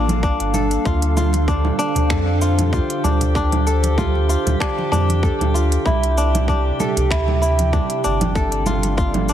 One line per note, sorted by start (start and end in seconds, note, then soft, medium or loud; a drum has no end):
0.00 0.31 A1 medium
0.00 0.85 G3 medium
0.00 0.85 A#3 medium
0.00 0.23 D4 medium
0.00 6.86 D4 medium
0.00 0.85 F4 medium
0.00 0.30 A4 medium
0.00 6.86 A4 medium
0.00 5.85 F5 medium
0.08 closed hi-hat medium
0.08 high conga medium
0.08 low conga medium
0.08 shaker soft
0.23 1.48 D4 medium
0.23 kick loud
0.23 shaker soft
0.40 0.77 G1 loud
0.40 closed hi-hat soft
0.54 1.86 A4 medium
0.54 muted conga soft
0.54 low conga medium
0.54 shaker medium
0.71 closed hi-hat medium
0.71 shaker soft
0.85 1.71 D2 loud
0.85 5.85 D3 medium
0.85 1.16 F4 medium
0.85 9.33 G4 medium
0.85 9.33 G5 medium
0.85 kick loud
0.85 muted conga soft
0.85 shaker soft
1.02 closed hi-hat soft
1.07 6.86 C5 medium
1.17 2.41 F4 medium
1.17 low conga medium
1.17 shaker medium
1.33 closed hi-hat medium
1.33 muted conga medium
1.33 shaker soft
1.48 1.78 D4 medium
1.48 kick medium
1.48 shaker soft
1.65 low conga medium
1.79 3.04 D4 loud
1.79 shaker medium
1.95 2.12 D2 medium
1.95 closed hi-hat medium
1.95 high conga soft
1.95 low conga medium
1.95 shaker soft
2.10 2.80 F2 medium
2.10 3.41 A4 medium
2.10 finger snap medium
2.10 kick loud
2.10 muted conga medium
2.10 low conga medium
2.10 shaker soft
2.41 2.72 F4 medium
2.41 shaker medium
2.58 closed hi-hat medium
2.58 high conga medium
2.58 low conga medium
2.58 shaker soft
2.73 3.98 F4 medium
2.73 kick loud
2.73 shaker soft
2.90 closed hi-hat soft
3.04 4.36 D2 loud
3.04 3.36 D4 medium
3.04 low conga medium
3.04 shaker medium
3.21 closed hi-hat medium
3.21 muted conga medium
3.21 high conga medium
3.21 low conga medium
3.21 shaker soft
3.35 4.60 D4 loud
3.35 kick loud
3.35 muted conga soft
3.35 shaker soft
3.52 closed hi-hat soft
3.52 low conga medium
3.67 4.98 A4 medium
3.67 shaker medium
3.83 closed hi-hat medium
3.83 muted conga medium
3.83 shaker soft
3.98 4.29 F4 medium
3.98 kick medium
3.98 low conga medium
3.98 shaker soft
4.15 muted conga soft
4.15 high conga medium
4.29 5.54 F4 medium
4.29 shaker medium
4.46 4.55 D2 medium
4.46 closed hi-hat medium
4.46 low conga medium
4.46 shaker soft
4.60 4.91 D4 medium
4.60 finger snap medium
4.60 kick loud
4.60 shaker soft
4.79 muted conga medium
4.92 5.30 F2 medium
4.92 6.17 D4 loud
4.92 low conga medium
4.92 shaker medium
5.09 closed hi-hat medium
5.09 high conga medium
5.09 shaker soft
5.23 6.55 A4 medium
5.23 kick loud
5.23 shaker soft
5.40 5.77 D2 loud
5.40 closed hi-hat soft
5.40 low conga medium
5.54 5.92 F4 medium
5.54 muted conga soft
5.54 shaker medium
5.72 closed hi-hat medium
5.72 shaker soft
5.86 6.71 C2 loud
5.86 8.36 C3 medium
5.86 7.10 E4 medium
5.86 kick loud
5.86 muted conga soft
5.86 low conga medium
5.86 shaker soft
6.03 9.33 C4 medium
6.03 closed hi-hat soft
6.10 9.32 G4 medium
6.18 6.48 D4 medium
6.18 shaker medium
6.22 8.36 E5 medium
6.22 9.33 G5 medium
6.35 closed hi-hat medium
6.35 muted conga medium
6.35 low conga medium
6.35 shaker soft
6.48 7.72 D4 loud
6.48 kick medium
6.48 shaker soft
6.80 8.12 A4 medium
6.80 low conga medium
6.80 shaker medium
6.96 7.12 C2 medium
6.96 closed hi-hat medium
6.96 high conga soft
6.96 low conga medium
6.96 shaker soft
7.11 7.80 D2 medium
7.11 7.41 E4 medium
7.11 finger snap medium
7.11 kick loud
7.11 muted conga soft
7.11 shaker soft
7.28 low conga medium
7.42 8.73 E4 medium
7.42 shaker medium
7.59 closed hi-hat medium
7.59 high conga medium
7.59 shaker soft
7.73 8.04 D4 medium
7.73 kick loud
7.73 low conga medium
7.73 shaker soft
7.90 closed hi-hat soft
8.04 9.33 G1 loud
8.04 9.29 D4 loud
8.04 shaker medium
8.21 closed hi-hat medium
8.21 muted conga medium
8.21 high conga medium
8.21 low conga medium
8.21 shaker soft
8.35 9.33 G3 medium
8.35 9.33 A4 medium
8.35 kick loud
8.35 shaker soft
8.41 9.33 D4 medium
8.52 9.33 A4 medium
8.52 9.33 F5 medium
8.52 closed hi-hat soft
8.57 9.33 A#3 medium
8.66 8.97 F4 medium
8.66 low conga medium
8.66 shaker medium
8.83 closed hi-hat medium
8.83 muted conga medium
8.83 shaker soft
8.97 9.33 F4 medium
8.97 kick loud
8.97 shaker soft
9.14 closed hi-hat soft
9.14 muted conga soft
9.14 high conga medium
9.14 low conga medium
9.29 9.33 D4 medium
9.29 shaker medium